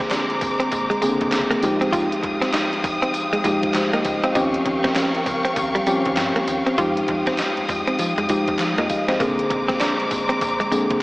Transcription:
Already playing: D3 G#3 A#3 C4 G#4 C5 A#5 D6
0.00 kick, snare
0.11 D4, snare, clap, closed hi-hat, tambourine
0.30 G#1, closed hi-hat
0.41 G#1, muted clean electric guitar stroke, kick, open hi-hat, tambourine
0.60 C4, closed hi-hat
0.72 A#1, muted clean electric guitar stroke, kick, closed hi-hat, tambourine
0.90 G#3, closed hi-hat
1.02 C#3 G#3 A#3 C4 G#4, closed hi-hat, tambourine
1.08 D3
1.21 A#1, kick, closed hi-hat
1.32 C2, snare, clap, closed hi-hat, tambourine
1.51 A#3, closed hi-hat
1.62 F1 F3 G#3 D#4 G4 F5 G5 D#6, muted clean electric guitar stroke, closed hi-hat, tambourine
1.81 C4, closed hi-hat
1.93 F1 F4, kick, closed hi-hat, tambourine
2.12 closed hi-hat
2.23 F1, muted clean electric guitar stroke, kick, closed hi-hat
2.42 C4, snare, closed hi-hat
2.54 D#4, snare, clap, closed hi-hat, tambourine
2.73 F1, closed hi-hat
2.84 F1, muted clean electric guitar stroke, kick, open hi-hat, tambourine
3.02 C4, closed hi-hat
3.14 muted clean electric guitar stroke, closed hi-hat, tambourine
3.33 A#1 G#3, closed hi-hat
3.44 A#1 F3 G#3 D#4 G4, kick, closed hi-hat, tambourine
3.63 kick, closed hi-hat
3.74 G#1 C5, snare, clap, closed hi-hat, tambourine
3.93 A#3 D#5, closed hi-hat
4.05 C#2, muted clean electric guitar stroke, kick, closed hi-hat, tambourine
4.23 C4 C5, closed hi-hat
4.35 D#2 F3 C4 C#4 D#4 G4 A#4 C#6, kick, closed hi-hat, tambourine
4.54 closed hi-hat
4.66 D#2, muted clean electric guitar stroke, kick, closed hi-hat
4.84 C4, kick, snare, closed hi-hat
4.95 C#4, snare, clap, closed hi-hat, tambourine
5.15 C#2, closed hi-hat
5.26 C#2, muted clean electric guitar stroke, kick, open hi-hat, tambourine
5.45 C4, closed hi-hat
5.56 D#2, muted clean electric guitar stroke, kick, closed hi-hat, tambourine
5.75 G3, closed hi-hat
5.86 F3 G3 C4 C#4 G4, closed hi-hat, tambourine
6.06 D#2, kick, closed hi-hat
6.17 G2, snare, clap, closed hi-hat, tambourine
6.36 A#3, closed hi-hat
6.48 D#2, muted clean electric guitar stroke, closed hi-hat, tambourine
6.67 C4, closed hi-hat
6.78 F2 F3 G#3 D#4 F4 G4 D#6, kick, closed hi-hat, tambourine
6.97 closed hi-hat
7.08 F2, muted clean electric guitar stroke, kick, closed hi-hat
7.27 C4, kick, snare, closed hi-hat
7.39 D#4, snare, clap, closed hi-hat, tambourine
7.57 F2, closed hi-hat
7.69 F2, muted clean electric guitar stroke, kick, open hi-hat, tambourine
7.87 C4, closed hi-hat
7.99 F3, muted clean electric guitar stroke, closed hi-hat, tambourine
8.18 F2 G#3, closed hi-hat
8.29 F3 G#3 D#4 G4, kick, closed hi-hat, tambourine
8.48 F2, kick, closed hi-hat
8.59 F3, snare, clap, closed hi-hat, tambourine
8.78 F2 A#3 D#5, closed hi-hat
8.90 F5, muted clean electric guitar stroke, kick, open hi-hat, tambourine
9.08 G#1 C4 C5, snare, closed hi-hat
9.20 A#1 C3 A#3 C4 G#4 C5 A#5 D6, kick, closed hi-hat, tambourine
9.27 D3
9.39 closed hi-hat
9.50 A#1, muted clean electric guitar stroke, kick, closed hi-hat
9.68 C4, kick, snare, closed hi-hat
9.80 D4, snare, clap, closed hi-hat, tambourine
10.00 G#1, closed hi-hat
10.11 G#1, muted clean electric guitar stroke, kick, open hi-hat, tambourine
10.29 C4, closed hi-hat
10.41 A#1, muted clean electric guitar stroke, kick, closed hi-hat, tambourine
10.60 G#3, closed hi-hat
10.71 D3 G#3 A#3 C4 G#4, closed hi-hat, tambourine
10.90 A#1, kick, closed hi-hat

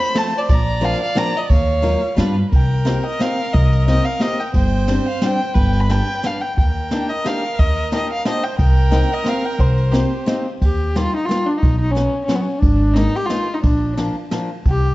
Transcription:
Already playing: C5 B5
0.14 F3 A3 C4 F4 A5, snare, ride
0.38 D5
0.49 A#1 D5 A#5, kick, ride
0.81 F3 A#3 D4 F4 F5, ride
1.03 F5
1.15 F3 A#3 D4 F4 A#5, snare, ride
1.37 D#5
1.50 D#2 C#5 F5, kick, ride
1.82 F#3 A#3 D#4 F4, ride
2.16 G2 G3 B3 D4 F4 B4, snare, ride
2.51 C2 A#4, kick, ride
2.55 G5
2.85 A#3 C4 D#4 G4, snare, ride
3.05 D#5
3.19 A#3 C4 D#4 G4 F5, snare, ride
3.53 C2 D#5, kick, ride
3.72 ride
3.87 A#3 C4 D#4 G4 D#5, snare, ride
4.05 F5
4.19 A#3 C4 D#4 G4 D#5, snare, ride
4.40 G5
4.54 G1 C5 G5, kick, ride
4.88 G3 C4 D4 G4, snare, ride
5.08 F5
5.22 G3 C4 D4 G4, snare, ride
5.28 G5
5.54 G1 B4, kick, ride
5.59 G5
5.73 ride
5.80 B5
5.89 G3 B3 D4 G4 G5, snare, ride
6.23 G3 B3 D4 G4 F5, snare, ride
6.41 G5
6.57 D#2 A#4 G5, kick, ride
6.91 A#3 D4 D#4 G4, snare, ride
7.10 D#5
7.24 A#3 D4 D#4 G4 F5, snare, ride
7.59 D#2 D#5, kick, ride
7.77 ride
7.92 A#3 D4 D#4 G4 D#5, snare, ride
8.13 F5
8.25 A#3 D4 D#4 G4 C5 D#5, snare, ride
8.43 G5
8.56 C2 A#4 G5, kick, ride
8.91 A#3 C4 D#4 G4, snare, ride
9.13 D#5
9.24 A#3 C4 D#4 G4, snare, ride
9.29 F5
9.45 G5
9.59 C2 C5, kick, ride
9.77 ride
9.91 A#3 C4 D#4 G4, snare, ride
10.26 A#3 C4 D#4 G4, snare, ride
10.61 D#2 G4, kick, ride
10.96 G3 A#3 D#4 F4, snare, ride
11.16 D#4
11.26 G3 A#3 F4
11.30 D#4, snare, ride
11.46 D4
11.58 D#4
11.63 B1, kick, ride
11.80 D#4
11.91 F#3 C#4
11.96 B3 C#4 F#4, snare, ride
12.25 F#3 B3 C#4, snare, ride
12.29 F#4
12.35 B3
12.40 C#4
12.58 D4
12.62 G#1, kick, ride
12.94 G#3 A#3 B3 D#4, snare, ride
13.16 G4
13.26 G#3 F4
13.30 A#3 B3 D#4, snare, ride
13.54 D#4
13.63 A#1 D4, kick, ride
13.97 F3 A#3 D4 F4, snare, ride
14.31 F3 A#3 D4 F4, snare, ride
14.65 C2, kick, ride
14.69 G4

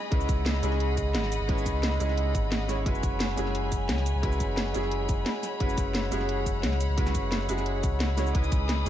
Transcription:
Already playing: G#3 C#4 D#4 E4 G#4 B4 D#5 B5
0.11 C#2 G#3 C#4 D#4 E4 B4 F#5, kick, closed hi-hat
0.21 shaker
0.29 C#2, kick, closed hi-hat, shaker
0.46 snare, closed hi-hat
0.62 C#2 G#3 C#4 D#4 E4 G#4, closed hi-hat, shaker
0.72 snare
0.80 closed hi-hat
0.97 kick, closed hi-hat, shaker
1.15 G#1, snare, closed hi-hat
1.24 snare
1.32 closed hi-hat, shaker
1.41 G#1
1.48 G#3 C#4 D#4 E4 B4, kick, closed hi-hat
1.58 shaker
1.66 C#2, kick, closed hi-hat, shaker
1.83 snare, closed hi-hat
1.99 C#2 G#3 C#4 D#4 E4 G#4, closed hi-hat, shaker
2.09 snare
2.17 closed hi-hat
2.35 G#1, kick, closed hi-hat, shaker
2.52 snare, closed hi-hat
2.68 G#3 C#4 D#4 E4 C#5, snare, closed hi-hat, shaker
2.85 F#1 G#3 C#4 E4 F#4 B4 C#5 G#5 B5, kick, closed hi-hat
2.95 shaker
3.03 F#1, kick, closed hi-hat, shaker
3.20 snare, closed hi-hat
3.36 F#1 G#3 C#4 E4 F#4 G#4, closed hi-hat, shaker
3.47 snare
3.55 closed hi-hat
3.72 kick, closed hi-hat, shaker
3.89 C#2, snare, closed hi-hat
3.98 snare
4.06 closed hi-hat, shaker
4.15 C#2
4.22 G#3 C#4 E4 F#4 B4, kick, closed hi-hat
4.32 shaker
4.40 F#1, kick, closed hi-hat, shaker
4.57 snare, closed hi-hat
4.73 F#1 G#3 C#4 E4 F#4 G#4, closed hi-hat, shaker
4.83 snare
4.91 closed hi-hat
5.09 kick, closed hi-hat, shaker
5.26 snare, closed hi-hat
5.43 snare, closed hi-hat, shaker
5.59 F#1 G#3 C#4 E4 F#4 B4 F#5, kick, closed hi-hat
5.69 shaker
5.78 F#1, kick, closed hi-hat, shaker
5.95 snare, closed hi-hat
6.11 F#1 G#3 C#4 E4 F#4 G#4, closed hi-hat, shaker
6.21 snare
6.29 closed hi-hat
6.46 kick, closed hi-hat, shaker
6.63 C#2, snare, closed hi-hat
6.72 snare
6.80 closed hi-hat, shaker
6.89 C#2
6.97 G#3 C#4 E4 F#4 B4, kick, closed hi-hat
7.06 snare, shaker
7.15 F#1, kick, closed hi-hat, shaker
7.32 snare, closed hi-hat
7.48 F#1 G#3 C#4 E4 F#4 G#4, closed hi-hat, shaker
7.58 snare, shaker
7.66 closed hi-hat
7.83 C#2, kick, closed hi-hat, shaker
8.00 snare, closed hi-hat
8.17 G#3 C#4 E4 F#4 C#5, snare, closed hi-hat, shaker
8.26 shaker
8.33 C#2 G#3 C#4 D#4 E4 B4 G#5 B5 D#6, kick, closed hi-hat
8.44 shaker
8.52 C#2, kick, closed hi-hat, shaker
8.69 snare, closed hi-hat
8.85 C#2 G#3 C#4 D#4, closed hi-hat, shaker

